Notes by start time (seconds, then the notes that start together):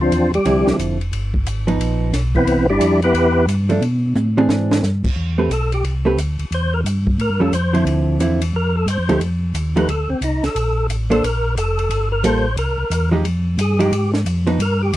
Already playing: D2
0.01 F3 C4 D4 F4
0.11 E2, hi-hat pedal, ride
0.32 E2 G3 G4, ride
0.45 C2 D3 F3 C4 E4, ride
0.66 C2, snare
0.79 F1, hi-hat pedal, ride
1.01 ride
1.12 G1, ride
1.34 kick
1.45 G#1, hi-hat pedal, ride
1.67 F3 B3 D#4, ride
1.79 A#1, ride
2.13 B1, snare, hi-hat pedal, ride
2.35 E3 B3 C4 E4, kick, ride
2.46 C2, ride
2.57 B1
2.68 G1 G3 D4 E4 G4
2.80 F2, hi-hat pedal, ride
3.02 B3 E4 G4 B4, ride
3.14 E2, ride
3.47 G2, hi-hat pedal, ride
3.69 F3 A3 D4, ride
3.81 B2, ride
4.15 A2, hi-hat pedal, high tom
4.37 E3 C4 D4 G#4, high tom
4.49 G#2, snare
4.71 snare
4.82 G2, snare, hi-hat pedal
5.04 G2, kick, crash
5.16 E2
5.38 A3 C4 G4 B4
5.50 B1 A4, hi-hat pedal, ride
5.72 G4, ride
5.84 C2, ride
6.05 A3 C4 G4 B4
6.17 D2, hi-hat pedal, ride
6.39 D2, ride
6.51 E2 C5, ride
6.74 A#4
6.84 G2, hi-hat pedal, ride
7.07 kick
7.18 A2 A#4, ride
7.29 G2
7.40 F2 G3 C#4 F4 A4
7.52 F2 C5, hi-hat pedal, ride
7.73 D3 F3 C4 E4, ride
7.85 D2, ride
8.19 E2 D3 F3 C4 E4, hi-hat pedal, ride
8.41 ride
8.53 F2 A#4
8.77 A4
8.86 G2 C5, hi-hat pedal, ride
8.98 F2
9.09 D2 F3 A3 D#4 G4, ride
9.20 F2, ride
9.54 D#2, hi-hat pedal, ride
9.76 F3 A3 D#4 G4 B4, ride
9.87 D2 A4, ride
10.09 D2 C4
10.21 C2 D#4, hi-hat pedal, ride
10.43 C2 A4, snare, ride
10.55 A#1, ride
10.88 A1, hi-hat pedal, ride
11.10 A#3 D4 A4 C5, ride
11.23 A#1 A#4, ride
11.56 F1 A4, hi-hat pedal, ride
11.79 ride
11.90 G1, ride
12.12 A#4
12.23 A1 G3 A#3 F4 A4 C5, hi-hat pedal, ride
12.57 C2 A#4, ride
12.78 C2
12.90 E2, hi-hat pedal, ride
13.11 F3 G#3 D#4 G4
13.24 F2, ride
13.58 G2 G#4, hi-hat pedal, ride
13.79 F3 G#3 D#4 G4, ride
13.92 G#2, ride
14.14 snare
14.26 F2, hi-hat pedal, ride
14.47 F3 B3 D#4, ride
14.59 G2 A#4, ride
14.83 G4
14.93 D#2, hi-hat pedal, ride